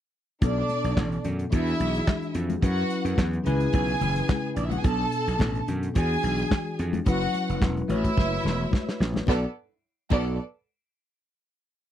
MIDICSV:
0, 0, Header, 1, 5, 480
1, 0, Start_track
1, 0, Tempo, 554017
1, 366, Time_signature, 4, 2, 24, 8
1, 10319, End_track
2, 0, Start_track
2, 0, Title_t, "Violin section"
2, 0, Program_c, 0, 48
2, 363, Note_on_c, 0, 74, 103
2, 364, Note_on_c, 0, 62, 87
2, 1066, Note_off_c, 0, 74, 0
2, 1067, Note_off_c, 0, 62, 0
2, 1324, Note_on_c, 0, 64, 94
2, 1324, Note_on_c, 0, 76, 96
2, 2025, Note_off_c, 0, 64, 0
2, 2025, Note_off_c, 0, 76, 0
2, 2275, Note_on_c, 0, 78, 97
2, 2276, Note_on_c, 0, 66, 89
2, 2745, Note_off_c, 0, 78, 0
2, 2746, Note_off_c, 0, 66, 0
2, 2990, Note_on_c, 0, 68, 89
2, 2992, Note_on_c, 0, 80, 106
2, 3889, Note_off_c, 0, 68, 0
2, 3890, Note_off_c, 0, 80, 0
2, 3951, Note_on_c, 0, 74, 56
2, 3953, Note_on_c, 0, 62, 53
2, 4017, Note_off_c, 0, 74, 0
2, 4018, Note_off_c, 0, 62, 0
2, 4018, Note_on_c, 0, 76, 70
2, 4023, Note_on_c, 0, 64, 59
2, 4074, Note_on_c, 0, 66, 71
2, 4076, Note_on_c, 0, 78, 76
2, 4082, Note_off_c, 0, 76, 0
2, 4084, Note_off_c, 0, 64, 0
2, 4132, Note_on_c, 0, 68, 81
2, 4134, Note_off_c, 0, 66, 0
2, 4135, Note_off_c, 0, 78, 0
2, 4135, Note_on_c, 0, 80, 87
2, 4189, Note_on_c, 0, 81, 109
2, 4191, Note_on_c, 0, 69, 95
2, 4192, Note_off_c, 0, 68, 0
2, 4194, Note_off_c, 0, 80, 0
2, 4898, Note_off_c, 0, 81, 0
2, 4899, Note_off_c, 0, 69, 0
2, 5158, Note_on_c, 0, 68, 96
2, 5161, Note_on_c, 0, 80, 107
2, 5864, Note_off_c, 0, 68, 0
2, 5866, Note_off_c, 0, 80, 0
2, 6120, Note_on_c, 0, 66, 92
2, 6121, Note_on_c, 0, 78, 109
2, 6591, Note_off_c, 0, 66, 0
2, 6591, Note_off_c, 0, 78, 0
2, 6839, Note_on_c, 0, 76, 98
2, 6840, Note_on_c, 0, 64, 93
2, 7783, Note_off_c, 0, 64, 0
2, 7783, Note_off_c, 0, 76, 0
2, 8045, Note_on_c, 0, 59, 95
2, 8045, Note_on_c, 0, 74, 95
2, 8051, Note_on_c, 0, 69, 83
2, 8183, Note_off_c, 0, 59, 0
2, 8184, Note_off_c, 0, 74, 0
2, 8186, Note_off_c, 0, 69, 0
2, 8763, Note_on_c, 0, 69, 81
2, 8764, Note_on_c, 0, 59, 78
2, 8764, Note_on_c, 0, 74, 101
2, 8987, Note_off_c, 0, 59, 0
2, 8987, Note_off_c, 0, 69, 0
2, 8987, Note_off_c, 0, 74, 0
2, 10319, End_track
3, 0, Start_track
3, 0, Title_t, "Tine electric piano"
3, 0, Program_c, 1, 4
3, 356, Note_on_c, 1, 47, 64
3, 366, Note_on_c, 1, 59, 61
3, 374, Note_on_c, 1, 62, 58
3, 384, Note_on_c, 1, 69, 74
3, 538, Control_c, 1, 64, 127
3, 1297, Note_off_c, 1, 47, 0
3, 1302, Note_off_c, 1, 59, 0
3, 1306, Note_off_c, 1, 62, 0
3, 1308, Note_on_c, 1, 52, 63
3, 1311, Note_off_c, 1, 69, 0
3, 1317, Note_on_c, 1, 62, 63
3, 1325, Note_on_c, 1, 66, 55
3, 1333, Control_c, 1, 64, 0
3, 1336, Note_on_c, 1, 68, 69
3, 1496, Control_c, 1, 64, 127
3, 2251, Note_off_c, 1, 52, 0
3, 2256, Note_off_c, 1, 62, 0
3, 2260, Note_off_c, 1, 66, 0
3, 2266, Note_off_c, 1, 68, 0
3, 2267, Note_on_c, 1, 54, 72
3, 2274, Note_on_c, 1, 61, 66
3, 2277, Note_on_c, 1, 64, 64
3, 2280, Note_on_c, 1, 71, 73
3, 2289, Control_c, 1, 64, 0
3, 2464, Control_c, 1, 64, 127
3, 2977, Note_off_c, 1, 61, 0
3, 2978, Note_on_c, 1, 49, 75
3, 2987, Note_off_c, 1, 64, 0
3, 2988, Note_on_c, 1, 61, 62
3, 2991, Note_off_c, 1, 54, 0
3, 2992, Note_off_c, 1, 71, 0
3, 2997, Note_on_c, 1, 64, 67
3, 3003, Note_on_c, 1, 71, 86
3, 3007, Control_c, 1, 64, 0
3, 3147, Control_c, 1, 64, 127
3, 4162, Note_off_c, 1, 49, 0
3, 4167, Note_off_c, 1, 61, 0
3, 4172, Note_off_c, 1, 64, 0
3, 4175, Note_off_c, 1, 71, 0
3, 4182, Note_on_c, 1, 47, 69
3, 4193, Note_on_c, 1, 59, 59
3, 4201, Note_on_c, 1, 62, 62
3, 4207, Control_c, 1, 64, 0
3, 4209, Note_on_c, 1, 69, 78
3, 4366, Control_c, 1, 64, 127
3, 5130, Note_off_c, 1, 47, 0
3, 5136, Note_off_c, 1, 59, 0
3, 5140, Note_off_c, 1, 62, 0
3, 5144, Note_off_c, 1, 69, 0
3, 5151, Note_on_c, 1, 52, 64
3, 5162, Note_on_c, 1, 62, 60
3, 5166, Control_c, 1, 64, 0
3, 5172, Note_on_c, 1, 66, 59
3, 5179, Note_on_c, 1, 68, 70
3, 5329, Control_c, 1, 64, 127
3, 6096, Note_off_c, 1, 52, 0
3, 6102, Note_off_c, 1, 62, 0
3, 6107, Note_off_c, 1, 66, 0
3, 6111, Note_off_c, 1, 68, 0
3, 6121, Note_on_c, 1, 54, 70
3, 6126, Note_on_c, 1, 61, 63
3, 6128, Control_c, 1, 64, 0
3, 6129, Note_on_c, 1, 64, 69
3, 6134, Note_on_c, 1, 71, 71
3, 6259, Control_c, 1, 64, 127
3, 6829, Note_on_c, 1, 57, 64
3, 6833, Note_off_c, 1, 71, 0
3, 6837, Note_on_c, 1, 66, 64
3, 6841, Note_off_c, 1, 54, 0
3, 6844, Note_off_c, 1, 61, 0
3, 6844, Note_on_c, 1, 71, 63
3, 6845, Note_off_c, 1, 64, 0
3, 6853, Control_c, 1, 64, 0
3, 6854, Note_on_c, 1, 73, 77
3, 7000, Control_c, 1, 64, 127
3, 8013, Note_off_c, 1, 57, 0
3, 8017, Note_off_c, 1, 66, 0
3, 8021, Note_off_c, 1, 71, 0
3, 8026, Note_off_c, 1, 73, 0
3, 8041, Note_on_c, 1, 59, 71
3, 8041, Note_on_c, 1, 69, 69
3, 8042, Note_on_c, 1, 66, 70
3, 8043, Note_on_c, 1, 74, 86
3, 8053, Control_c, 1, 64, 0
3, 8181, Note_off_c, 1, 59, 0
3, 8181, Note_off_c, 1, 69, 0
3, 8182, Note_off_c, 1, 66, 0
3, 8182, Note_off_c, 1, 74, 0
3, 8764, Note_on_c, 1, 69, 74
3, 8765, Note_on_c, 1, 59, 73
3, 8769, Note_on_c, 1, 66, 76
3, 8769, Note_on_c, 1, 74, 82
3, 8987, Note_off_c, 1, 69, 0
3, 8988, Note_off_c, 1, 59, 0
3, 8990, Note_off_c, 1, 66, 0
3, 8990, Note_off_c, 1, 74, 0
3, 10319, End_track
4, 0, Start_track
4, 0, Title_t, "Slap bass"
4, 0, Program_c, 2, 36
4, 363, Note_on_c, 2, 35, 93
4, 533, Note_off_c, 2, 35, 0
4, 729, Note_on_c, 2, 35, 86
4, 809, Note_off_c, 2, 35, 0
4, 840, Note_on_c, 2, 33, 93
4, 1010, Note_off_c, 2, 33, 0
4, 1078, Note_on_c, 2, 42, 68
4, 1248, Note_off_c, 2, 42, 0
4, 1323, Note_on_c, 2, 40, 100
4, 1491, Note_off_c, 2, 40, 0
4, 1558, Note_on_c, 2, 35, 82
4, 1728, Note_off_c, 2, 35, 0
4, 2033, Note_on_c, 2, 41, 80
4, 2204, Note_off_c, 2, 41, 0
4, 2276, Note_on_c, 2, 42, 96
4, 2446, Note_off_c, 2, 42, 0
4, 2639, Note_on_c, 2, 42, 97
4, 2720, Note_off_c, 2, 42, 0
4, 2755, Note_on_c, 2, 40, 96
4, 2925, Note_off_c, 2, 40, 0
4, 3001, Note_on_c, 2, 37, 83
4, 3169, Note_off_c, 2, 37, 0
4, 3240, Note_on_c, 2, 35, 88
4, 3408, Note_off_c, 2, 35, 0
4, 3473, Note_on_c, 2, 30, 97
4, 3643, Note_off_c, 2, 30, 0
4, 3953, Note_on_c, 2, 34, 69
4, 4124, Note_off_c, 2, 34, 0
4, 4197, Note_on_c, 2, 35, 108
4, 4366, Note_off_c, 2, 35, 0
4, 4570, Note_on_c, 2, 35, 88
4, 4647, Note_off_c, 2, 35, 0
4, 4677, Note_on_c, 2, 33, 84
4, 4847, Note_off_c, 2, 33, 0
4, 4923, Note_on_c, 2, 42, 70
4, 5090, Note_off_c, 2, 42, 0
4, 5164, Note_on_c, 2, 40, 95
4, 5332, Note_off_c, 2, 40, 0
4, 5401, Note_on_c, 2, 35, 86
4, 5570, Note_off_c, 2, 35, 0
4, 5884, Note_on_c, 2, 41, 78
4, 6052, Note_off_c, 2, 41, 0
4, 6122, Note_on_c, 2, 30, 96
4, 6291, Note_off_c, 2, 30, 0
4, 6493, Note_on_c, 2, 30, 91
4, 6571, Note_off_c, 2, 30, 0
4, 6600, Note_on_c, 2, 28, 96
4, 6770, Note_off_c, 2, 28, 0
4, 6839, Note_on_c, 2, 33, 88
4, 7010, Note_off_c, 2, 33, 0
4, 7083, Note_on_c, 2, 30, 84
4, 7252, Note_off_c, 2, 30, 0
4, 7319, Note_on_c, 2, 28, 79
4, 7490, Note_off_c, 2, 28, 0
4, 7798, Note_on_c, 2, 34, 92
4, 7970, Note_off_c, 2, 34, 0
4, 8042, Note_on_c, 2, 35, 90
4, 8182, Note_off_c, 2, 35, 0
4, 8765, Note_on_c, 2, 35, 94
4, 8988, Note_off_c, 2, 35, 0
4, 10319, End_track
5, 0, Start_track
5, 0, Title_t, "Drums"
5, 362, Note_on_c, 9, 42, 77
5, 363, Note_on_c, 9, 62, 54
5, 364, Note_on_c, 9, 36, 109
5, 448, Note_off_c, 9, 42, 0
5, 449, Note_off_c, 9, 62, 0
5, 450, Note_off_c, 9, 36, 0
5, 601, Note_on_c, 9, 42, 51
5, 602, Note_on_c, 9, 62, 36
5, 687, Note_off_c, 9, 42, 0
5, 688, Note_off_c, 9, 62, 0
5, 731, Note_on_c, 9, 42, 49
5, 818, Note_off_c, 9, 42, 0
5, 840, Note_on_c, 9, 36, 95
5, 845, Note_on_c, 9, 38, 115
5, 846, Note_on_c, 9, 63, 72
5, 849, Note_on_c, 9, 39, 89
5, 926, Note_off_c, 9, 36, 0
5, 932, Note_off_c, 9, 38, 0
5, 933, Note_off_c, 9, 63, 0
5, 936, Note_off_c, 9, 39, 0
5, 970, Note_on_c, 9, 42, 33
5, 1057, Note_off_c, 9, 42, 0
5, 1078, Note_on_c, 9, 42, 64
5, 1087, Note_on_c, 9, 64, 60
5, 1165, Note_off_c, 9, 42, 0
5, 1174, Note_off_c, 9, 64, 0
5, 1206, Note_on_c, 9, 42, 45
5, 1293, Note_off_c, 9, 42, 0
5, 1316, Note_on_c, 9, 42, 81
5, 1322, Note_on_c, 9, 36, 112
5, 1326, Note_on_c, 9, 62, 64
5, 1403, Note_off_c, 9, 42, 0
5, 1409, Note_off_c, 9, 36, 0
5, 1413, Note_off_c, 9, 62, 0
5, 1447, Note_on_c, 9, 42, 37
5, 1534, Note_off_c, 9, 42, 0
5, 1561, Note_on_c, 9, 42, 60
5, 1566, Note_on_c, 9, 62, 50
5, 1647, Note_off_c, 9, 42, 0
5, 1653, Note_off_c, 9, 62, 0
5, 1684, Note_on_c, 9, 42, 46
5, 1770, Note_off_c, 9, 42, 0
5, 1798, Note_on_c, 9, 36, 106
5, 1799, Note_on_c, 9, 38, 100
5, 1803, Note_on_c, 9, 39, 80
5, 1806, Note_on_c, 9, 63, 77
5, 1884, Note_off_c, 9, 36, 0
5, 1886, Note_off_c, 9, 38, 0
5, 1890, Note_off_c, 9, 39, 0
5, 1892, Note_off_c, 9, 63, 0
5, 1928, Note_on_c, 9, 42, 30
5, 2015, Note_off_c, 9, 42, 0
5, 2031, Note_on_c, 9, 42, 65
5, 2118, Note_off_c, 9, 42, 0
5, 2163, Note_on_c, 9, 42, 42
5, 2164, Note_on_c, 9, 63, 83
5, 2250, Note_off_c, 9, 42, 0
5, 2250, Note_off_c, 9, 63, 0
5, 2274, Note_on_c, 9, 36, 106
5, 2275, Note_on_c, 9, 42, 82
5, 2276, Note_on_c, 9, 62, 50
5, 2361, Note_off_c, 9, 36, 0
5, 2362, Note_off_c, 9, 42, 0
5, 2363, Note_off_c, 9, 62, 0
5, 2401, Note_on_c, 9, 42, 30
5, 2488, Note_off_c, 9, 42, 0
5, 2515, Note_on_c, 9, 42, 52
5, 2602, Note_off_c, 9, 42, 0
5, 2647, Note_on_c, 9, 42, 51
5, 2734, Note_off_c, 9, 42, 0
5, 2754, Note_on_c, 9, 36, 103
5, 2754, Note_on_c, 9, 63, 70
5, 2762, Note_on_c, 9, 38, 107
5, 2766, Note_on_c, 9, 39, 87
5, 2841, Note_off_c, 9, 36, 0
5, 2841, Note_off_c, 9, 63, 0
5, 2849, Note_off_c, 9, 38, 0
5, 2853, Note_off_c, 9, 39, 0
5, 2886, Note_on_c, 9, 42, 33
5, 2973, Note_off_c, 9, 42, 0
5, 2995, Note_on_c, 9, 42, 67
5, 2998, Note_on_c, 9, 64, 59
5, 3082, Note_off_c, 9, 42, 0
5, 3085, Note_off_c, 9, 64, 0
5, 3121, Note_on_c, 9, 42, 44
5, 3208, Note_off_c, 9, 42, 0
5, 3230, Note_on_c, 9, 42, 81
5, 3238, Note_on_c, 9, 36, 102
5, 3246, Note_on_c, 9, 62, 64
5, 3317, Note_off_c, 9, 42, 0
5, 3324, Note_off_c, 9, 36, 0
5, 3332, Note_off_c, 9, 62, 0
5, 3360, Note_on_c, 9, 42, 37
5, 3447, Note_off_c, 9, 42, 0
5, 3476, Note_on_c, 9, 42, 63
5, 3479, Note_on_c, 9, 62, 54
5, 3479, Note_on_c, 9, 64, 75
5, 3562, Note_off_c, 9, 42, 0
5, 3566, Note_off_c, 9, 62, 0
5, 3566, Note_off_c, 9, 64, 0
5, 3602, Note_on_c, 9, 42, 47
5, 3689, Note_off_c, 9, 42, 0
5, 3718, Note_on_c, 9, 36, 97
5, 3718, Note_on_c, 9, 63, 84
5, 3719, Note_on_c, 9, 38, 101
5, 3723, Note_on_c, 9, 39, 85
5, 3804, Note_off_c, 9, 36, 0
5, 3805, Note_off_c, 9, 63, 0
5, 3806, Note_off_c, 9, 38, 0
5, 3810, Note_off_c, 9, 39, 0
5, 3954, Note_on_c, 9, 42, 69
5, 4041, Note_off_c, 9, 42, 0
5, 4081, Note_on_c, 9, 63, 86
5, 4084, Note_on_c, 9, 42, 51
5, 4168, Note_off_c, 9, 63, 0
5, 4171, Note_off_c, 9, 42, 0
5, 4194, Note_on_c, 9, 42, 81
5, 4195, Note_on_c, 9, 62, 54
5, 4197, Note_on_c, 9, 36, 123
5, 4281, Note_off_c, 9, 42, 0
5, 4281, Note_off_c, 9, 62, 0
5, 4284, Note_off_c, 9, 36, 0
5, 4438, Note_on_c, 9, 42, 56
5, 4524, Note_off_c, 9, 42, 0
5, 4575, Note_on_c, 9, 42, 46
5, 4662, Note_off_c, 9, 42, 0
5, 4673, Note_on_c, 9, 63, 73
5, 4679, Note_on_c, 9, 36, 96
5, 4689, Note_on_c, 9, 38, 122
5, 4693, Note_on_c, 9, 39, 91
5, 4759, Note_off_c, 9, 63, 0
5, 4765, Note_off_c, 9, 36, 0
5, 4775, Note_off_c, 9, 38, 0
5, 4779, Note_off_c, 9, 39, 0
5, 4807, Note_on_c, 9, 42, 35
5, 4894, Note_off_c, 9, 42, 0
5, 4921, Note_on_c, 9, 42, 65
5, 4924, Note_on_c, 9, 64, 55
5, 5007, Note_off_c, 9, 42, 0
5, 5011, Note_off_c, 9, 64, 0
5, 5050, Note_on_c, 9, 42, 41
5, 5137, Note_off_c, 9, 42, 0
5, 5158, Note_on_c, 9, 42, 87
5, 5164, Note_on_c, 9, 36, 107
5, 5165, Note_on_c, 9, 62, 59
5, 5244, Note_off_c, 9, 42, 0
5, 5250, Note_off_c, 9, 36, 0
5, 5252, Note_off_c, 9, 62, 0
5, 5397, Note_on_c, 9, 62, 51
5, 5404, Note_on_c, 9, 42, 64
5, 5483, Note_off_c, 9, 62, 0
5, 5491, Note_off_c, 9, 42, 0
5, 5531, Note_on_c, 9, 42, 42
5, 5618, Note_off_c, 9, 42, 0
5, 5634, Note_on_c, 9, 63, 75
5, 5643, Note_on_c, 9, 36, 102
5, 5646, Note_on_c, 9, 38, 106
5, 5650, Note_on_c, 9, 39, 86
5, 5721, Note_off_c, 9, 63, 0
5, 5730, Note_off_c, 9, 36, 0
5, 5732, Note_off_c, 9, 38, 0
5, 5736, Note_off_c, 9, 39, 0
5, 5882, Note_on_c, 9, 42, 70
5, 5969, Note_off_c, 9, 42, 0
5, 6006, Note_on_c, 9, 63, 90
5, 6012, Note_on_c, 9, 42, 46
5, 6092, Note_off_c, 9, 63, 0
5, 6098, Note_off_c, 9, 42, 0
5, 6116, Note_on_c, 9, 62, 55
5, 6121, Note_on_c, 9, 36, 107
5, 6121, Note_on_c, 9, 42, 78
5, 6203, Note_off_c, 9, 62, 0
5, 6208, Note_off_c, 9, 36, 0
5, 6208, Note_off_c, 9, 42, 0
5, 6359, Note_on_c, 9, 42, 50
5, 6364, Note_on_c, 9, 62, 36
5, 6445, Note_off_c, 9, 42, 0
5, 6451, Note_off_c, 9, 62, 0
5, 6494, Note_on_c, 9, 42, 48
5, 6581, Note_off_c, 9, 42, 0
5, 6599, Note_on_c, 9, 36, 97
5, 6599, Note_on_c, 9, 63, 70
5, 6607, Note_on_c, 9, 38, 97
5, 6611, Note_on_c, 9, 39, 89
5, 6685, Note_off_c, 9, 63, 0
5, 6686, Note_off_c, 9, 36, 0
5, 6694, Note_off_c, 9, 38, 0
5, 6698, Note_off_c, 9, 39, 0
5, 6733, Note_on_c, 9, 42, 28
5, 6820, Note_off_c, 9, 42, 0
5, 6834, Note_on_c, 9, 64, 52
5, 6841, Note_on_c, 9, 42, 66
5, 6921, Note_off_c, 9, 64, 0
5, 6927, Note_off_c, 9, 42, 0
5, 6969, Note_on_c, 9, 36, 75
5, 6969, Note_on_c, 9, 42, 45
5, 7056, Note_off_c, 9, 36, 0
5, 7056, Note_off_c, 9, 42, 0
5, 7079, Note_on_c, 9, 62, 60
5, 7084, Note_on_c, 9, 36, 116
5, 7095, Note_on_c, 9, 38, 52
5, 7166, Note_off_c, 9, 62, 0
5, 7170, Note_off_c, 9, 36, 0
5, 7182, Note_off_c, 9, 38, 0
5, 7309, Note_on_c, 9, 62, 52
5, 7309, Note_on_c, 9, 64, 69
5, 7336, Note_on_c, 9, 38, 69
5, 7396, Note_off_c, 9, 62, 0
5, 7396, Note_off_c, 9, 64, 0
5, 7423, Note_off_c, 9, 38, 0
5, 7550, Note_on_c, 9, 63, 78
5, 7564, Note_on_c, 9, 36, 109
5, 7574, Note_on_c, 9, 38, 74
5, 7637, Note_off_c, 9, 63, 0
5, 7650, Note_off_c, 9, 36, 0
5, 7660, Note_off_c, 9, 38, 0
5, 7699, Note_on_c, 9, 38, 77
5, 7786, Note_off_c, 9, 38, 0
5, 7810, Note_on_c, 9, 38, 97
5, 7897, Note_off_c, 9, 38, 0
5, 7918, Note_on_c, 9, 63, 80
5, 7938, Note_on_c, 9, 38, 84
5, 8004, Note_off_c, 9, 63, 0
5, 8025, Note_off_c, 9, 38, 0
5, 8030, Note_on_c, 9, 62, 69
5, 8041, Note_on_c, 9, 36, 112
5, 8051, Note_on_c, 9, 38, 87
5, 8117, Note_off_c, 9, 62, 0
5, 8128, Note_off_c, 9, 36, 0
5, 8138, Note_off_c, 9, 38, 0
5, 8754, Note_on_c, 9, 62, 73
5, 8762, Note_on_c, 9, 49, 79
5, 8763, Note_on_c, 9, 36, 103
5, 8840, Note_off_c, 9, 62, 0
5, 8849, Note_off_c, 9, 49, 0
5, 8850, Note_off_c, 9, 36, 0
5, 10319, End_track
0, 0, End_of_file